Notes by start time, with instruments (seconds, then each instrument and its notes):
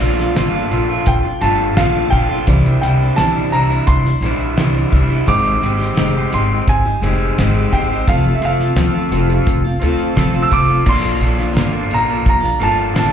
Already playing: clean electric guitar A#2, steel-string acoustic guitar D4 F4 A4, reed electric piano F4 A4 D5, grand piano F5
0.00 upright bass A#1, clean electric guitar F3 A3 D4 F4, closed hi-hat, tambourine
0.19 steel-string acoustic guitar D4 F4 A4, snare, closed hi-hat
0.35 upright bass G1, clean electric guitar A#2 F3 A3 D4 F4, steel-string acoustic guitar A4, snare, closed hi-hat, tambourine
0.54 clean electric guitar A3 D4 F4
0.71 upright bass A#1, clean electric guitar F3 A3 D4 F4, closed hi-hat, tambourine
0.89 clean electric guitar A3 D4 F4
1.06 upright bass A#1, grand piano G5, kick, closed hi-hat, tambourine
1.23 steel-string acoustic guitar D4 F4 A4, muted clean electric guitar stroke
1.41 upright bass G1, clean electric guitar F3 A3 D4 F4, steel-string acoustic guitar A4, grand piano A5, closed hi-hat, tambourine
1.75 upright bass A#1, clean electric guitar A#2 F3 A3 D4 F4, steel-string acoustic guitar A4, grand piano F5, snare, closed hi-hat, tambourine
1.95 clean electric guitar A3 D4 F4
2.10 upright bass A#1, clean electric guitar F3 A3 D4 F4, steel-string acoustic guitar A#3 A4, grand piano G5, kick, closed hi-hat
2.29 clean electric guitar A3 D4 F4, steel-string acoustic guitar A4
2.47 upright bass C2, clean electric guitar C3 E3 G3 D4 E4, reed electric piano E4 C5 D5, steel-string acoustic guitar C5, kick, closed hi-hat
2.65 steel-string acoustic guitar G3 D4 E4 C5, closed hi-hat
2.81 upright bass C2, clean electric guitar E3 G3 D4 E4, grand piano G5, snare, closed hi-hat, tambourine
3.01 steel-string acoustic guitar G3 D4 E4 C5
3.16 upright bass A#1, clean electric guitar C3 E3 G3 D4 E4, grand piano A5, snare, closed hi-hat, tambourine
3.21 steel-string acoustic guitar C5
3.35 clean electric guitar G3 D4 E4
3.50 upright bass C2, clean electric guitar E3 G3 D4, grand piano A#5, closed hi-hat, tambourine
3.55 clean electric guitar E4
3.70 clean electric guitar G3 D4 E4, closed hi-hat
3.87 upright bass C2, grand piano C6, kick, closed hi-hat, tambourine
4.05 steel-string acoustic guitar G3 D4 E4 C5, muted clean electric guitar stroke, snare
4.21 upright bass A#1, clean electric guitar E3 G3 D4, closed hi-hat, tambourine
4.25 clean electric guitar E4, steel-string acoustic guitar C5
4.41 closed hi-hat
4.57 upright bass C2, clean electric guitar C3 E3 G3 D4 E4, steel-string acoustic guitar C5, snare, closed hi-hat, tambourine
4.74 clean electric guitar G3 D4 E4, closed hi-hat
4.92 upright bass C2, clean electric guitar E3 G3 D4 E4, steel-string acoustic guitar C5, kick, closed hi-hat
5.09 clean electric guitar G3 D4 E4, steel-string acoustic guitar C5
5.27 upright bass G#1, clean electric guitar G#3 C4 D#4 G4, steel-string acoustic guitar C5, reed electric piano C5 D#5, grand piano D6, kick, closed hi-hat
5.45 closed hi-hat
5.62 upright bass G#1, clean electric guitar G#3 C4 D#4 G4, closed hi-hat, tambourine
5.77 steel-string acoustic guitar D#4 G4 C5
5.81 snare, closed hi-hat
5.97 upright bass F1, clean electric guitar G#3 C4 D#4 G4, steel-string acoustic guitar C5, snare, closed hi-hat, tambourine
6.14 clean electric guitar C4 D#4 G4, steel-string acoustic guitar C5
6.31 upright bass G#1, clean electric guitar G#3 C4 D#4 G4, grand piano C6, closed hi-hat, tambourine
6.51 clean electric guitar C4 D#4 G4
6.67 upright bass G#1, grand piano G#5, kick, closed hi-hat, tambourine
6.84 steel-string acoustic guitar D#4 G4 C5, muted clean electric guitar stroke
7.02 upright bass F1, clean electric guitar G#3 C4 D#4 G4, steel-string acoustic guitar C5, closed hi-hat, tambourine
7.38 upright bass G#1, clean electric guitar G#3 C4 D#4 G4, steel-string acoustic guitar C5, snare, closed hi-hat, tambourine
7.54 clean electric guitar C4 D#4 G4
7.72 upright bass G#1, clean electric guitar G#3 C4 D#4 G4, steel-string acoustic guitar C5, grand piano G5, kick, closed hi-hat
7.89 clean electric guitar C4 D#4 G4, steel-string acoustic guitar C5
8.07 upright bass F1, clean electric guitar F3 C4 F4 A4, steel-string acoustic guitar A3, reed electric piano A4 C5 F5, grand piano F5, kick, closed hi-hat
8.25 steel-string acoustic guitar C4 F4 A4, closed hi-hat
8.35 grand piano E5
8.41 upright bass F1, clean electric guitar F3 C4 F4 A4, closed hi-hat, tambourine
8.45 grand piano F5
8.60 steel-string acoustic guitar C4 F4 A4, snare
8.76 upright bass D2, clean electric guitar F3 C4 F4 A4, steel-string acoustic guitar A3, snare, closed hi-hat, tambourine
8.93 clean electric guitar C4 F4 A4
9.11 upright bass F1, clean electric guitar F3 C4 F4 A4, closed hi-hat, tambourine
9.29 clean electric guitar C4 F4 A4, closed hi-hat
9.46 upright bass F1, kick, closed hi-hat, tambourine
9.63 steel-string acoustic guitar C4 F4 A4, muted clean electric guitar stroke
9.80 upright bass D2, clean electric guitar F3 C4 F4 A4, steel-string acoustic guitar A3, closed hi-hat, tambourine
9.99 closed hi-hat
10.15 upright bass F1, clean electric guitar F3 C4 F4 A4, steel-string acoustic guitar A3, kick, snare, closed hi-hat, tambourine
10.34 clean electric guitar C4 F4 A4, closed hi-hat
10.42 grand piano E6
10.50 upright bass F1, clean electric guitar F3 C4 F4 A4, steel-string acoustic guitar A3, grand piano D6, kick, closed hi-hat, tambourine
10.69 clean electric guitar C4 F4 A4
10.84 upright bass A#1, clean electric guitar A#2 D3 F3 A#3 D4 A4, steel-string acoustic guitar F4, reed electric piano F4 D5, kick, crash
10.89 grand piano C6
11.03 steel-string acoustic guitar D4 F4 A4, closed hi-hat
11.20 upright bass A#1, clean electric guitar F3 A#3 D4 A4, closed hi-hat, tambourine
11.36 steel-string acoustic guitar D4 F4 A4, snare, closed hi-hat
11.53 upright bass G1, clean electric guitar A#2 D3 F3, steel-string acoustic guitar A#3 D4 F4, closed hi-hat, tambourine
11.57 clean electric guitar A#3 D4 A4, snare
11.72 clean electric guitar F3 A#3 D4 A4
11.90 upright bass A#1, clean electric guitar F3 A#3 D4 A4, grand piano A#5, closed hi-hat, tambourine
12.08 clean electric guitar F3 A#3 D4 A4
12.26 upright bass A#1, grand piano A#5, kick, closed hi-hat, tambourine
12.40 steel-string acoustic guitar D4 F4 A4, muted clean electric guitar stroke, snare
12.59 upright bass G1, clean electric guitar F3 A#3 D4 A4, steel-string acoustic guitar F4, grand piano A5, closed hi-hat, tambourine
12.93 upright bass A#1, clean electric guitar A#2 D3 F3 A#3 D4 A4, steel-string acoustic guitar F4, snare, closed hi-hat, tambourine
12.99 grand piano A5